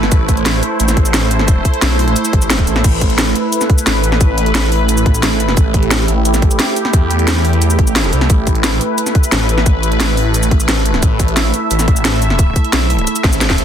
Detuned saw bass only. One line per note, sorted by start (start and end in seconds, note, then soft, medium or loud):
0.00 0.10 A1 loud
0.12 0.61 A1 loud
0.80 1.64 A1 loud
1.82 2.15 B1 loud
2.33 2.66 A1 loud
2.67 2.83 A1 loud
2.84 3.34 A1 loud
3.87 5.22 A1 loud
5.23 5.56 A1 loud
5.57 6.07 A1 loud
6.08 6.58 A1 loud
6.93 7.77 E2 loud
7.79 8.11 A1 loud
8.13 8.28 C2 loud
8.30 8.80 A1 loud
9.32 10.67 A1 loud
10.68 11.01 A1 loud
11.03 11.52 A1 loud
11.71 12.55 A1 loud
12.73 13.06 B1 loud
13.24 13.57 A1 loud
13.58 13.65 A1 loud